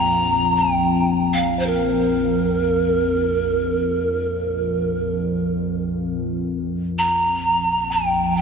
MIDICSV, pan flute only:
0, 0, Header, 1, 2, 480
1, 0, Start_track
1, 0, Tempo, 500000
1, 8079, End_track
2, 0, Start_track
2, 0, Title_t, "Pan flute"
2, 0, Program_c, 0, 75
2, 0, Note_on_c, 0, 82, 96
2, 538, Note_on_c, 0, 79, 81
2, 553, Note_off_c, 0, 82, 0
2, 1027, Note_off_c, 0, 79, 0
2, 1278, Note_on_c, 0, 77, 84
2, 1525, Note_on_c, 0, 72, 54
2, 1540, Note_off_c, 0, 77, 0
2, 1592, Note_on_c, 0, 70, 77
2, 1607, Note_off_c, 0, 72, 0
2, 5007, Note_off_c, 0, 70, 0
2, 6699, Note_on_c, 0, 82, 88
2, 7592, Note_on_c, 0, 79, 80
2, 7606, Note_off_c, 0, 82, 0
2, 8024, Note_on_c, 0, 77, 77
2, 8039, Note_off_c, 0, 79, 0
2, 8079, Note_off_c, 0, 77, 0
2, 8079, End_track
0, 0, End_of_file